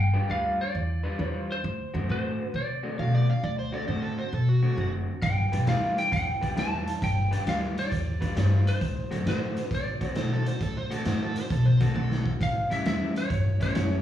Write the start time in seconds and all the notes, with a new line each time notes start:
Already playing: G1 G5
0.14 G3 D4 F4 B4
0.28 D2 G3 D4 F4 B4 F5
0.61 D5
0.75 E2
1.03 G3 D4 F4 B4
1.18 E2 G3 D4 F4 B4
1.26 C5
1.52 C5
1.64 D2
1.94 F#2 D3 A3 C4 F#4
2.08 A2 D3 A3 C4 F#4 C5
2.54 C3 D5
2.83 D3 A3 C4 F#4
2.98 B2 D3 A3 C4 F#4 F5
3.15 D5
3.30 F5
3.43 D2 D5
3.59 C5
3.72 D3 A3 C4 F#4 D5
3.87 A2 D3 A3 C4 F#4 C5
4.02 A4
4.18 C5
4.33 B2 A4
4.49 F#4
4.63 D3 A3 C4 F#4
4.76 F#1 D3 A3 C4 F#4
5.22 G1 G5, kick, closed hi-hat
5.52 B1 G3 D4 F4 B4, closed hi-hat
5.66 D2 G3 D4 F4 B4 F5, snare, closed hi-hat
5.98 G5, closed hi-hat
6.12 F2 G5, kick, closed hi-hat
6.41 G3 D4 F4 B4, kick, closed hi-hat
6.56 E2 G3 D4 F4 B4 A5, snare, closed hi-hat
6.87 closed hi-hat
7.02 G1 G5, kick, closed hi-hat
7.31 G3 D4 F4 B4, closed hi-hat
7.46 D2 G3 D4 F4 B4 F5, snare, closed hi-hat
7.78 D5, snare, closed hi-hat
7.92 E2, kick, closed hi-hat
8.21 G3 D4 F4 B4, kick, closed hi-hat
8.36 G2 G3 D4 F4 B4, snare, closed hi-hat
8.44 C5
8.67 C5, closed hi-hat
8.81 D2, kick, closed hi-hat
9.11 F#2 D3 A3 C4 F#4, closed hi-hat
9.25 A2 D3 A3 C4 F#4 C5, snare, closed hi-hat
9.57 closed hi-hat
9.71 C3 D5, kick, closed hi-hat
10.01 D3 A3 C4 F#4, kick, closed hi-hat
10.15 B2 D3 A3 C4 F#4 C5, snare, closed hi-hat
10.33 A4
10.46 C5, closed hi-hat
10.61 D2 A4, kick, snare, closed hi-hat
10.77 C5
10.90 D3 A3 C4 F#4 A4, closed hi-hat
11.05 A2 D3 A3 C4 F#4 C5, snare, closed hi-hat
11.22 A4
11.36 C5, closed hi-hat
11.50 B2 A4, kick, closed hi-hat
11.66 C5
11.80 D3 A3 C4 F#4 A4, kick, snare, closed hi-hat
11.95 B1 D3 A3 C4 F#4 A4, high tom
12.11 snare
12.26 kick
12.41 A1 F5, kick, snare, closed hi-hat
12.70 C#2 A2 G3 C#4 E4 E5, closed hi-hat
12.85 E2 A2 G3 C#4 E4 E5, snare, closed hi-hat
13.16 C#5, closed hi-hat
13.30 G2, kick, closed hi-hat
13.60 A2 G3 C#4 E4 C#5, kick, closed hi-hat
13.75 F#2 A2 G3 C#4 E4, snare, closed hi-hat